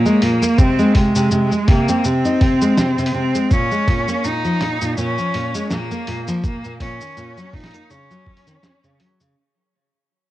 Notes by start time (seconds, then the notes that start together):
Already playing: A#3
0.06 G#3, cabasa
0.22 A#2, open hi-hat
0.42 A#3, cabasa
0.58 C3 C4, kick, cabasa
0.79 G#3, cabasa
0.95 C3 G#3, kick, open hi-hat
1.15 C3, cabasa
1.31 C3, cabasa
1.52 G#3, cabasa
1.68 C3 A#3, kick, open hi-hat
1.88 C4, cabasa
2.04 C3 C4, cabasa
2.25 D#4, cabasa
2.41 C3, kick, open hi-hat
2.62 G#3, cabasa
2.78 C3, snare, cabasa
2.98 C3, cabasa
3.06 open hi-hat
3.14 C3 C4
3.35 G#3, cabasa
3.51 A#2 C#4, kick, cabasa
3.71 G#3, cabasa
3.88 A#2, kick, open hi-hat
4.08 A#3, cabasa
4.24 A#2 D#4, cabasa
4.45 F3, cabasa
4.61 A#2, snare, open hi-hat
4.81 A#2, cabasa
4.97 A#2 C#4, cabasa
5.18 F3, cabasa
5.34 A#2, open hi-hat
5.55 G#3, cabasa
5.71 A#2 A#3, snare, cabasa
5.91 A#3, cabasa
6.07 A#2, open hi-hat
6.28 F3, cabasa
6.44 A#2 A#3, kick, cabasa
6.64 A#2, cabasa
6.80 A#2 C#4, kick, open hi-hat
7.01 D#3, cabasa
7.17 A#2, cabasa
7.37 F#3, cabasa
7.53 A#2 D#4, kick, open hi-hat
7.57 open hi-hat
7.60 snare, open hi-hat
7.64 open hi-hat
7.66 open hi-hat
7.71 A#3, open hi-hat, cabasa
7.90 C#3 C#4, cabasa
8.11 F#3, cabasa
8.27 kick
8.37 open hi-hat
8.47 D#3, cabasa
8.63 C#4, snare, cabasa
8.84 C#3, cabasa
9.00 F#3, open hi-hat
9.20 C#3, cabasa